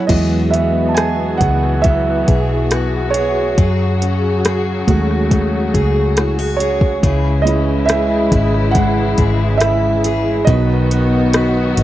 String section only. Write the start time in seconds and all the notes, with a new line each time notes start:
0.09 E3 B3 F#4 G#4
3.57 C#3 F#3
7.03 C#3 E3 G#3 E4
10.46 D#3 F#3 B3 F#4